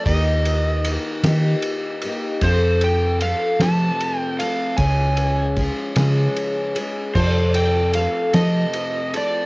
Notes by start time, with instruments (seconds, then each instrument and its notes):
0.06 picked electric bass D#2, twelve-string acoustic guitar D#3 A#3 D#4 G4, electric slide guitar D#5, kick, ride
0.45 ride
0.85 twelve-string acoustic guitar D#3 A#3 D#4 G4, ride
1.24 picked electric bass D#3, twelve-string acoustic guitar D#3 A#3 D#4 G4, snare, ride
1.63 ride
2.02 twelve-string acoustic guitar D#4 G4, ride
2.06 twelve-string acoustic guitar A#3
2.42 picked electric bass F2, twelve-string acoustic guitar F2 C3 F3 A3 C4 A4, electric slide guitar C5, kick, ride
2.81 electric slide guitar G5, ride
3.21 twelve-string acoustic guitar F3 A3 C4 A4, electric slide guitar F5, ride
3.60 twelve-string acoustic guitar F2 C3 F3 A3 C4 A4, picked electric bass F3, electric slide guitar A5, snare, ride
4.00 ride
4.20 electric slide guitar G5
4.39 twelve-string acoustic guitar F3 A3 C4 A4, electric slide guitar F5, ride
4.77 picked electric bass C#2, twelve-string acoustic guitar C#3 F3 G#3 C#4 G#4, electric slide guitar G#5, kick, ride
5.17 ride
5.56 twelve-string acoustic guitar F3 G#3 C#4 G#4, kick, ride
5.96 picked electric bass C#3, twelve-string acoustic guitar C#3 F3 G#3 C#4 G#4, snare, ride
6.36 ride
6.75 twelve-string acoustic guitar G#3 C#4 G#4, ride
7.15 twelve-string acoustic guitar F2 C3 F3 A3 C4 A4, picked electric bass F2, reed electric piano F4 A4 C5, electric slide guitar C5, kick, crash
7.54 reed electric piano F4 A4 C5, electric slide guitar G5, ride
7.94 twelve-string acoustic guitar F3 A3 C4, reed electric piano F4 A4 C5, electric slide guitar F5, ride
7.99 twelve-string acoustic guitar A4
8.34 twelve-string acoustic guitar F2 C3 F3 A3 C4 A4, picked electric bass F3, electric slide guitar D#5, snare, ride
8.74 reed electric piano F4 A4 C5, ride
9.14 twelve-string acoustic guitar F3 A3 C4 A4, reed electric piano F4 A4 C5, electric slide guitar D5, ride